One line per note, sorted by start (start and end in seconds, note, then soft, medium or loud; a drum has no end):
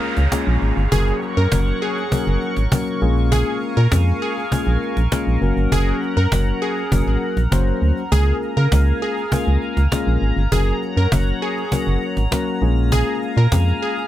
0.00 0.22 G#3 medium
0.00 0.22 A#3 medium
0.00 0.22 C#4 medium
0.00 0.22 F4 medium
0.00 0.89 G#4 medium
0.00 0.22 A#4 loud
0.00 2.98 C#5 medium
0.00 0.89 F5 medium
0.00 0.89 A#5 loud
0.00 cajon slap soft
0.00 downlifter medium
0.17 0.27 C#2 medium
0.17 cajon slap medium
0.32 0.82 G#3 medium
0.32 0.82 A#3 medium
0.32 0.82 C#4 medium
0.32 0.82 F4 medium
0.32 0.82 G#4 loud
0.32 cajon bass loud
0.32 cajon slap loud
0.47 0.58 A#1 loud
0.47 cajon slap soft
0.62 0.72 G#1 loud
0.62 cajon slap soft
0.77 0.87 G1 loud
0.77 cajon slap soft
0.92 1.13 F#1 loud
0.92 1.42 F#3 medium
0.92 1.42 A#3 medium
0.92 1.42 C#4 medium
0.92 1.42 F#4 medium
0.92 1.16 G#4 loud
0.92 14.07 A#4 medium
0.92 1.42 A#4 medium
0.92 3.00 F#5 medium
0.92 5.38 C#6 loud
0.92 cajon bass loud
1.07 cajon slap soft
1.22 cajon slap soft
1.37 1.47 F#2 loud
1.37 1.49 A#4 medium
1.37 cajon slap soft
1.52 1.73 F#1 loud
1.52 2.02 F#3 medium
1.52 2.02 A#3 medium
1.52 2.02 C#4 medium
1.52 2.02 F#4 medium
1.52 2.02 A#4 medium
1.52 cajon bass loud
1.52 cajon slap loud
1.67 cajon slap soft
1.82 2.38 G#4 medium
1.82 cajon slap soft
1.97 cajon slap soft
2.12 2.62 F#3 medium
2.12 2.62 A#3 medium
2.12 2.62 C#4 medium
2.12 2.62 F#4 medium
2.12 2.62 A#4 loud
2.12 cajon bass loud
2.27 2.37 F#1 medium
2.42 cajon slap soft
2.57 2.67 G#1 medium
2.57 cajon slap medium
2.72 3.02 F#3 loud
2.72 3.00 A#3 medium
2.72 3.00 C#4 medium
2.72 3.02 F#4 medium
2.72 3.02 A#4 loud
2.72 cajon bass loud
2.72 cajon slap loud
2.87 cajon slap soft
3.01 3.44 A#1 loud
3.01 3.77 G#3 loud
3.01 3.77 A#3 medium
3.01 3.77 C#4 medium
3.01 3.77 F4 loud
3.01 3.77 G#4 loud
3.01 5.40 F5 medium
3.01 5.40 G#5 medium
3.01 cajon slap soft
3.17 cajon slap soft
3.32 3.56 G#4 loud
3.32 cajon bass loud
3.62 cajon slap soft
3.77 3.87 A#2 loud
3.77 3.89 A#4 medium
3.77 cajon slap soft
3.92 4.13 F2 loud
3.92 4.42 G#3 medium
3.92 4.42 A#3 medium
3.92 4.42 C#4 medium
3.92 4.42 F4 medium
3.92 4.42 G#4 medium
3.92 cajon bass loud
3.92 cajon slap loud
4.07 cajon slap soft
4.22 4.78 G#4 medium
4.22 cajon slap soft
4.37 cajon slap soft
4.51 5.02 G#3 medium
4.51 5.02 A#3 medium
4.51 5.02 C#4 medium
4.51 5.02 F4 medium
4.51 5.02 G#4 medium
4.51 cajon bass loud
4.67 4.77 A#1 loud
4.82 cajon slap soft
4.97 5.07 A#1 medium
4.97 cajon slap medium
5.11 5.42 G#3 loud
5.11 5.41 A#3 medium
5.11 5.41 C#4 medium
5.11 5.42 F4 medium
5.11 5.42 G#4 loud
5.11 cajon bass loud
5.11 cajon slap loud
5.27 5.37 A#1 medium
5.42 5.52 F#1 loud
5.42 6.17 F#3 loud
5.42 6.17 A#3 medium
5.42 6.17 C#4 medium
5.42 8.09 C#4 medium
5.42 6.17 F#4 medium
5.42 6.17 A#4 loud
5.42 8.09 F#5 medium
5.42 14.07 A#5 loud
5.42 cajon slap soft
5.57 5.67 G1 loud
5.57 cajon slap soft
5.72 5.93 F#1 loud
5.72 5.96 G#4 loud
5.72 cajon bass loud
6.02 cajon slap soft
6.17 6.27 F#2 loud
6.17 6.29 A#4 medium
6.17 cajon slap soft
6.32 6.53 F#1 medium
6.32 6.82 F#3 medium
6.32 6.82 A#3 medium
6.32 6.82 C#4 medium
6.32 6.82 F#4 medium
6.32 6.82 A#4 medium
6.32 cajon bass loud
6.32 cajon slap loud
6.62 7.18 G#4 medium
6.62 cajon slap soft
6.77 cajon slap soft
6.92 7.02 F#1 loud
6.92 7.42 F#3 medium
6.92 7.42 A#3 medium
6.92 7.42 C#4 medium
6.92 7.42 F#4 medium
6.92 7.42 A#4 loud
6.92 cajon bass loud
7.07 7.17 G#1 loud
7.22 cajon slap soft
7.37 7.47 A#1 medium
7.37 cajon slap medium
7.51 7.73 F#1 loud
7.51 8.02 F#3 medium
7.51 8.02 A#3 medium
7.51 8.02 C#4 medium
7.51 8.02 F#4 medium
7.51 8.02 C5 loud
7.51 cajon bass loud
7.51 cajon slap loud
7.67 cajon slap soft
7.82 7.92 D2 medium
7.82 cajon slap soft
7.97 cajon slap soft
8.12 8.33 C#2 loud
8.12 8.62 G#3 medium
8.12 8.62 A#3 medium
8.12 8.62 C#4 medium
8.12 8.62 F4 medium
8.12 8.36 G#4 loud
8.12 8.62 G#4 medium
8.12 10.50 F5 medium
8.12 10.50 G#5 medium
8.12 cajon bass loud
8.42 cajon slap soft
8.57 8.67 C#3 loud
8.57 8.69 A#4 medium
8.57 cajon slap soft
8.72 8.93 C#2 loud
8.72 9.22 G#3 medium
8.72 9.22 A#3 medium
8.72 9.22 C#4 medium
8.72 9.22 F4 medium
8.72 9.22 G#4 medium
8.72 cajon bass loud
8.72 cajon slap loud
8.87 cajon slap soft
9.02 9.58 G#4 medium
9.02 cajon slap soft
9.17 cajon slap soft
9.31 9.82 G#3 medium
9.31 9.82 A#3 medium
9.31 9.82 C#4 medium
9.31 9.82 F4 medium
9.31 9.82 A#4 medium
9.31 cajon bass loud
9.47 9.57 C#2 medium
9.47 cajon slap soft
9.62 cajon slap soft
9.77 9.87 C#2 medium
9.77 cajon slap medium
9.92 10.42 G#3 loud
9.92 10.42 A#3 medium
9.92 10.42 C#4 medium
9.92 10.42 F4 medium
9.92 10.42 G#4 loud
9.92 cajon bass loud
9.92 cajon slap loud
10.07 10.17 A#1 loud
10.07 cajon slap soft
10.22 10.32 G#1 loud
10.22 cajon slap soft
10.37 10.47 G1 loud
10.37 cajon slap soft
10.52 10.73 F#1 loud
10.52 11.02 F#3 medium
10.52 11.02 A#3 medium
10.52 11.02 C#4 medium
10.52 11.02 F#4 medium
10.52 10.76 G#4 loud
10.52 11.02 A#4 medium
10.52 12.60 C#5 medium
10.52 12.60 F#5 medium
10.52 cajon bass loud
10.82 cajon slap soft
10.97 11.07 F#2 loud
10.97 11.09 A#4 medium
10.97 cajon slap soft
11.12 11.33 F#1 loud
11.12 11.62 F#3 medium
11.12 11.62 A#3 medium
11.12 11.62 C#4 medium
11.12 11.62 F#4 medium
11.12 11.62 A#4 medium
11.12 cajon bass loud
11.12 cajon slap loud
11.42 11.98 G#4 medium
11.42 cajon slap soft
11.57 cajon slap soft
11.72 12.22 F#3 medium
11.72 12.22 A#3 medium
11.72 12.22 C#4 medium
11.72 12.22 F#4 medium
11.72 12.22 A#4 loud
11.72 cajon bass loud
11.87 11.97 F#1 medium
11.87 cajon slap soft
12.02 cajon slap soft
12.17 12.27 G#1 medium
12.17 cajon slap medium
12.31 12.62 F#3 loud
12.31 12.60 A#3 medium
12.31 12.61 C#4 medium
12.31 12.62 F#4 medium
12.31 12.62 A#4 loud
12.31 cajon bass loud
12.31 cajon slap loud
12.62 13.03 A#1 loud
12.62 13.37 G#3 loud
12.62 13.37 A#3 loud
12.62 13.37 C#4 medium
12.62 13.37 F4 medium
12.62 13.37 G#4 loud
12.62 14.07 F5 medium
12.62 14.07 G#5 medium
12.62 cajon slap soft
12.77 cajon slap soft
12.92 13.16 G#4 loud
12.92 cajon bass loud
13.22 cajon slap soft
13.37 13.47 A#2 loud
13.37 13.49 A#4 medium
13.37 cajon slap soft
13.52 13.73 F2 medium
13.52 14.02 G#3 medium
13.52 14.02 A#3 medium
13.52 14.02 C#4 medium
13.52 14.02 F4 medium
13.52 14.02 G#4 medium
13.52 cajon bass loud
13.52 cajon slap loud
13.67 cajon slap soft
13.82 14.07 G#4 medium
13.82 cajon slap soft
13.97 cajon slap soft